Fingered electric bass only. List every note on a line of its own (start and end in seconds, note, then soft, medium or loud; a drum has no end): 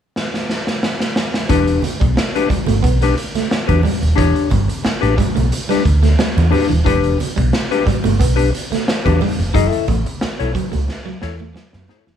1.50 1.78 E1 medium
2.02 2.15 B1 medium
2.50 muted fingered electric bass stroke soft
2.68 2.82 G1 medium
2.84 3.12 B1 medium
3.69 3.82 E2 loud
4.02 4.16 D#1 medium
4.18 4.33 E1 loud
4.51 4.67 G1 medium
4.85 muted fingered electric bass stroke soft
5.03 5.16 A1 medium
5.37 5.50 B1 medium
5.86 6.14 D2 loud
6.37 6.50 E2 loud
6.71 6.84 D#1 medium
6.86 7.15 E1 loud
7.37 7.51 B1 medium
7.87 muted fingered electric bass stroke medium
8.05 8.18 G1 medium
8.21 8.49 B1 medium
9.06 9.19 E2 medium
9.39 9.52 F1 medium
9.54 9.70 F#1 loud
9.88 10.03 A1 loud
10.23 muted fingered electric bass stroke soft
10.40 10.53 B1 medium
10.74 10.87 C#2 medium
11.23 11.51 E2 medium
11.74 11.87 F#2 loud
12.07 12.17 F1 medium